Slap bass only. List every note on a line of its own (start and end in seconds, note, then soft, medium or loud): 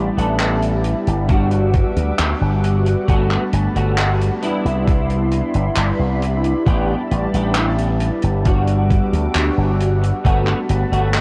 0.17 0.93 A1 medium
1.07 1.82 G1 medium
1.97 2.10 D2 medium
2.19 2.33 D2 medium
2.41 2.94 G1 loud
3.08 3.36 G1 medium
3.53 3.67 G1 medium
3.75 4.29 G1 medium
4.65 5.41 C2 medium
5.55 5.68 G1 medium
5.77 5.91 G1 medium
5.99 6.52 C2 loud
6.66 6.94 A1 loud
7.11 7.25 A1 medium
7.34 8.09 A1 medium
8.23 8.99 G1 medium
9.13 9.26 D2 medium
9.35 9.49 D2 medium
9.58 10.11 G1 loud
10.25 10.52 G1 loud
10.69 10.83 G1 medium
10.92 11.21 G1 medium